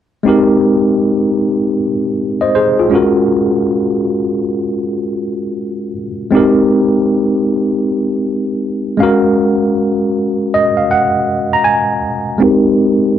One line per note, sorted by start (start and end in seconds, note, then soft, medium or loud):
0.23 2.87 G#3 medium
0.23 2.88 C4 medium
0.23 2.89 D#4 medium
0.28 1.77 G4 medium
0.28 1.77 A#4 medium
2.41 2.54 C5 soft
2.41 2.54 D#5 medium
2.55 2.78 G#4 medium
2.55 2.79 C5 medium
2.79 2.91 F4 soft
2.79 3.16 G#4 soft
2.90 5.91 G#3 medium
2.90 5.92 C#4 medium
2.90 5.93 F4 medium
2.90 5.93 F#4 medium
2.95 5.94 A#4 medium
6.31 8.95 G#3 medium
6.31 8.95 C4 medium
6.31 8.96 D#4 medium
6.35 8.97 G4 medium
6.35 8.98 A#4 medium
8.97 11.99 G#3 medium
8.97 12.00 C#4 medium
8.97 10.76 F5 medium
9.02 12.02 F#4 medium
9.02 12.02 A#4 medium
10.54 10.76 D#5 medium
10.77 10.90 F5 medium
10.91 11.50 F#5 medium
11.53 11.66 A#5 medium
11.64 12.38 G#5 medium
12.38 13.19 G#3 medium
12.38 13.19 C4 medium
12.38 13.19 D#4 medium
12.42 13.19 G4 medium
12.42 13.19 A#4 medium